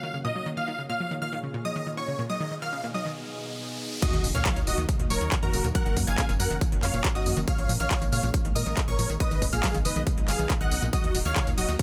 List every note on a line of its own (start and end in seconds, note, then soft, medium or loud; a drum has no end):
0.00 0.55 F#2 medium
0.00 0.55 C#3 medium
0.00 0.07 D#3 loud
0.00 2.26 A#3 medium
0.00 0.54 F#4 medium
0.00 0.55 C#5 medium
0.00 0.17 F5 medium
0.00 0.17 F6 medium
0.14 0.18 C#3 medium
0.24 0.27 A#2 loud
0.24 0.49 D#5 medium
0.24 0.49 D#6 medium
0.35 0.40 F#3 medium
0.46 0.50 D#3 loud
0.57 2.28 A#2 medium
0.57 0.60 D#3 medium
0.57 2.28 F4 medium
0.57 2.28 G#4 medium
0.57 2.28 C#5 medium
0.57 0.82 F5 loud
0.57 0.82 F6 medium
0.57 riser medium
0.68 0.72 D#3 loud
0.79 0.83 C#3 medium
0.89 0.92 A#2 loud
0.89 1.14 F5 medium
0.89 1.14 F6 medium
1.00 1.04 F3 medium
1.11 1.15 D#3 loud
1.22 1.24 D#3 medium
1.22 1.38 F5 medium
1.22 1.38 F6 medium
1.33 1.37 D#3 loud
1.43 1.48 C#3 medium
1.54 1.57 A#2 loud
1.65 1.69 F3 medium
1.65 1.90 D#5 medium
1.65 1.90 D#6 medium
1.76 1.80 D#3 loud
1.87 1.89 D#3 medium
1.97 2.01 D#3 medium
1.97 2.22 C#5 loud
1.97 2.22 C#6 medium
2.08 2.12 C#3 medium
2.19 2.21 A#2 loud
2.29 4.01 B2 medium
2.29 2.34 F#3 medium
2.29 4.01 B3 medium
2.29 4.01 D#4 medium
2.29 4.01 G#4 medium
2.29 2.54 D#5 loud
2.29 4.01 D#5 medium
2.29 2.54 D#6 medium
2.40 2.45 D#3 loud
2.51 2.54 D#3 medium
2.62 2.66 D#3 loud
2.62 2.87 F5 loud
2.62 2.87 F6 medium
2.73 2.77 C#3 medium
2.84 2.86 A#2 loud
2.94 2.99 F#3 medium
2.94 3.11 D#5 medium
2.94 3.11 D#6 medium
3.05 3.09 D#3 loud
4.02 4.05 D#3 medium
4.02 7.44 F#3 medium
4.02 9.16 A#3 medium
4.02 5.73 D#4 medium
4.02 4.27 F#4 medium
4.02 4.27 D#5 loud
4.02 4.27 D#6 medium
4.02 kick loud
4.02 closed hi-hat loud
4.02 tambourine soft
4.02 crash loud
4.02 impact medium
4.13 4.22 D#2 medium
4.13 4.17 D#3 loud
4.13 closed hi-hat medium
4.24 4.32 D#1 loud
4.24 4.28 C#3 medium
4.24 open hi-hat loud
4.24 tambourine medium
4.34 4.43 D#2 medium
4.34 4.37 A#2 loud
4.34 4.59 C#5 medium
4.34 4.59 F5 loud
4.34 4.59 F6 medium
4.34 closed hi-hat medium
4.34 tambourine soft
4.45 4.50 F#3 medium
4.45 kick loud
4.45 clap loud
4.45 closed hi-hat loud
4.45 tambourine soft
4.56 4.65 D#2 medium
4.56 4.60 D#3 loud
4.56 closed hi-hat medium
4.56 tambourine soft
4.67 4.76 D#1 loud
4.67 4.70 D#3 medium
4.67 4.84 F#4 medium
4.67 4.84 D#5 medium
4.67 4.84 D#6 medium
4.67 open hi-hat loud
4.67 tambourine medium
4.78 4.86 D#2 loud
4.78 4.82 D#3 loud
4.78 closed hi-hat medium
4.78 tambourine soft
4.89 4.93 C#3 medium
4.89 kick loud
4.89 closed hi-hat medium
4.89 tambourine soft
4.99 5.08 D#2 medium
4.99 5.02 A#2 loud
4.99 closed hi-hat medium
5.10 5.19 D#1 loud
5.10 5.14 F#3 medium
5.10 5.35 A#4 medium
5.10 5.35 C#5 loud
5.10 5.35 C#6 loud
5.10 open hi-hat loud
5.10 tambourine medium
5.21 5.30 D#2 medium
5.21 5.25 D#3 loud
5.21 closed hi-hat medium
5.21 tambourine soft
5.32 5.34 D#3 medium
5.32 kick loud
5.32 clap loud
5.32 closed hi-hat loud
5.32 tambourine soft
5.43 5.51 F2 medium
5.43 5.47 D#3 loud
5.43 5.67 F#4 medium
5.43 5.67 A#4 loud
5.43 5.67 A#5 medium
5.43 closed hi-hat medium
5.53 5.62 D#1 loud
5.53 5.58 C#3 medium
5.53 open hi-hat loud
5.53 tambourine medium
5.64 5.73 D#2 medium
5.64 5.67 A#2 loud
5.64 closed hi-hat medium
5.64 tambourine soft
5.75 5.79 F#3 medium
5.75 9.17 C#4 medium
5.75 6.00 A#4 medium
5.75 6.00 F#5 loud
5.75 6.00 F#6 loud
5.75 kick loud
5.75 closed hi-hat medium
5.75 tambourine soft
5.86 5.94 F#1 medium
5.86 5.90 D#3 loud
5.86 closed hi-hat medium
5.97 6.05 F#2 loud
5.97 5.99 D#3 medium
5.97 kick medium
5.97 open hi-hat loud
5.97 tambourine medium
6.07 6.16 F#1 medium
6.07 6.12 D#3 loud
6.07 6.32 F5 medium
6.07 6.32 G#5 loud
6.07 6.32 G#6 loud
6.07 tambourine soft
6.18 6.22 C#3 medium
6.18 kick loud
6.18 clap loud
6.18 closed hi-hat loud
6.18 tambourine soft
6.29 6.38 F#1 medium
6.29 6.31 A#2 loud
6.29 closed hi-hat medium
6.29 tambourine soft
6.40 6.48 F#2 loud
6.40 6.44 F#3 medium
6.40 6.56 A#4 medium
6.40 6.56 F#5 medium
6.40 6.56 F#6 medium
6.40 open hi-hat loud
6.40 tambourine medium
6.50 6.59 F#1 loud
6.50 6.55 D#3 loud
6.50 closed hi-hat medium
6.50 tambourine soft
6.61 6.64 D#3 medium
6.61 kick loud
6.61 closed hi-hat medium
6.61 tambourine soft
6.72 6.81 F#1 medium
6.72 6.76 D#3 loud
6.72 closed hi-hat medium
6.83 6.91 F#2 loud
6.83 6.87 C#3 medium
6.83 7.08 C#5 medium
6.83 7.08 F5 medium
6.83 7.08 F6 loud
6.83 clap medium
6.83 open hi-hat loud
6.83 tambourine medium
6.94 7.02 F#1 medium
6.94 6.96 A#2 loud
6.94 closed hi-hat medium
6.94 tambourine soft
7.04 7.09 F#3 medium
7.04 kick loud
7.04 clap loud
7.04 closed hi-hat medium
7.04 tambourine soft
7.15 7.24 G#1 medium
7.15 7.19 D#3 loud
7.15 7.40 F#4 medium
7.15 7.40 D#5 loud
7.15 7.40 D#6 loud
7.15 closed hi-hat medium
7.26 7.35 F#2 loud
7.26 7.29 D#3 medium
7.26 open hi-hat loud
7.26 tambourine medium
7.37 7.45 F#1 medium
7.37 7.41 D#3 loud
7.37 closed hi-hat medium
7.37 tambourine soft
7.48 7.52 C#3 medium
7.48 9.19 G#3 medium
7.48 7.72 C#5 medium
7.48 7.72 F5 loud
7.48 7.72 F6 loud
7.48 kick loud
7.48 closed hi-hat medium
7.48 tambourine soft
7.58 7.67 A#1 medium
7.58 7.61 A#2 loud
7.58 closed hi-hat medium
7.69 7.78 A#2 loud
7.69 7.73 F3 medium
7.69 open hi-hat loud
7.69 tambourine medium
7.80 7.89 A#1 medium
7.80 7.84 D#3 loud
7.80 8.05 C#5 medium
7.80 8.05 F5 loud
7.80 8.05 F6 loud
7.80 closed hi-hat medium
7.80 tambourine soft
7.91 kick loud
7.91 clap loud
7.91 closed hi-hat medium
7.91 tambourine soft
8.02 8.10 A#1 medium
8.02 8.06 D#3 loud
8.02 closed hi-hat soft
8.02 tambourine soft
8.12 8.21 A#2 loud
8.12 8.17 C#3 medium
8.12 8.29 C#5 medium
8.12 8.29 F5 medium
8.12 8.29 F6 medium
8.12 open hi-hat loud
8.12 tambourine medium
8.23 8.32 A#1 medium
8.23 8.26 A#2 loud
8.23 closed hi-hat soft
8.23 tambourine soft
8.34 8.38 F3 medium
8.34 kick loud
8.34 closed hi-hat medium
8.34 tambourine soft
8.45 8.53 A#1 medium
8.45 8.49 D#3 loud
8.45 closed hi-hat medium
8.55 8.64 A#2 loud
8.55 8.58 D#3 medium
8.55 8.80 A#4 medium
8.55 8.80 D#5 medium
8.55 8.80 D#6 loud
8.55 open hi-hat loud
8.55 tambourine medium
8.66 8.75 A#1 medium
8.66 8.71 D#3 loud
8.66 closed hi-hat medium
8.66 tambourine soft
8.77 8.81 C#3 medium
8.77 kick loud
8.77 clap loud
8.77 closed hi-hat medium
8.77 tambourine soft
8.88 8.96 B1 medium
8.88 8.90 A#2 loud
8.88 9.13 A#4 medium
8.88 9.13 C#5 loud
8.88 9.13 C#6 loud
8.88 closed hi-hat medium
8.99 9.07 A#2 loud
8.99 9.03 F3 medium
8.99 open hi-hat loud
8.99 tambourine medium
9.10 9.18 A#1 loud
9.10 9.14 D#3 loud
9.10 closed hi-hat medium
9.10 tambourine soft
9.20 9.23 D#3 medium
9.20 10.91 G#3 medium
9.20 10.91 B3 medium
9.20 11.82 D#4 medium
9.20 9.45 B4 medium
9.20 9.45 D#5 loud
9.20 9.45 D#6 loud
9.20 kick loud
9.20 closed hi-hat medium
9.20 tambourine soft
9.31 9.40 B1 medium
9.31 9.35 D#3 loud
9.31 closed hi-hat soft
9.31 tambourine soft
9.42 9.50 F#1 loud
9.42 9.46 C#3 medium
9.42 kick medium
9.42 open hi-hat loud
9.42 tambourine medium
9.53 9.61 B1 medium
9.53 9.55 A#2 loud
9.53 9.78 G#4 medium
9.53 9.78 F5 loud
9.53 9.77 F6 loud
9.53 closed hi-hat medium
9.53 tambourine soft
9.63 9.68 F#3 medium
9.63 kick loud
9.63 clap loud
9.63 closed hi-hat medium
9.63 tambourine soft
9.74 9.83 B1 medium
9.74 9.79 D#3 loud
9.74 closed hi-hat soft
9.74 tambourine soft
9.85 9.94 F#1 loud
9.85 9.88 D#3 medium
9.85 10.02 B4 medium
9.85 10.02 D#5 medium
9.85 10.01 D#6 medium
9.85 open hi-hat loud
9.85 tambourine medium
9.96 10.04 B1 medium
9.96 10.00 D#3 loud
9.96 closed hi-hat soft
9.96 tambourine soft
10.07 10.11 C#3 medium
10.07 kick loud
10.07 closed hi-hat medium
10.07 tambourine soft
10.17 10.26 B1 medium
10.17 10.20 A#2 loud
10.17 closed hi-hat soft
10.28 10.37 F#1 loud
10.28 10.32 F#3 medium
10.28 10.53 G#4 medium
10.28 10.53 F5 loud
10.28 10.53 F6 medium
10.28 clap medium
10.28 open hi-hat loud
10.28 tambourine medium
10.39 10.48 B1 medium
10.39 10.43 D#3 loud
10.39 closed hi-hat medium
10.39 tambourine soft
10.50 10.52 D#3 medium
10.50 kick loud
10.50 clap loud
10.50 closed hi-hat medium
10.50 tambourine soft
10.61 10.69 B1 medium
10.61 10.65 D#3 loud
10.61 10.85 D#5 medium
10.61 10.85 F#5 loud
10.61 10.85 F#6 medium
10.61 closed hi-hat soft
10.71 10.80 B1 loud
10.71 10.76 C#3 medium
10.71 open hi-hat loud
10.71 tambourine medium
10.82 10.91 B1 loud
10.82 10.85 A#2 loud
10.82 closed hi-hat medium
10.82 tambourine soft
10.93 11.82 F#3 medium
10.93 10.97 F#3 medium
10.93 11.82 A#3 medium
10.93 11.18 F#4 medium
10.93 11.18 D#5 loud
10.93 11.18 D#6 medium
10.93 kick loud
10.93 closed hi-hat medium
10.93 tambourine soft
11.04 11.12 D#2 medium
11.04 11.08 D#3 loud
11.04 closed hi-hat soft
11.15 11.23 D#1 loud
11.15 11.17 D#3 medium
11.15 open hi-hat loud
11.15 ride medium
11.15 tambourine medium
11.25 11.34 D#2 medium
11.25 11.30 D#3 loud
11.25 11.50 C#5 medium
11.25 11.50 F5 medium
11.25 11.50 F6 medium
11.25 closed hi-hat medium
11.25 tambourine soft
11.36 11.40 C#3 medium
11.36 kick loud
11.36 clap loud
11.36 closed hi-hat medium
11.36 tambourine soft
11.47 11.55 D#2 medium
11.47 11.50 A#2 loud
11.47 closed hi-hat soft
11.47 tambourine soft
11.58 11.66 D#1 loud
11.58 11.62 F#3 medium
11.58 11.74 F#4 medium
11.58 11.74 D#5 loud
11.58 11.74 D#6 medium
11.58 open hi-hat loud
11.58 ride medium
11.58 tambourine medium
11.69 11.77 D#2 medium
11.69 11.73 D#3 loud
11.69 closed hi-hat soft
11.69 tambourine soft
11.79 11.82 D#3 medium
11.79 kick loud
11.79 closed hi-hat medium
11.79 tambourine soft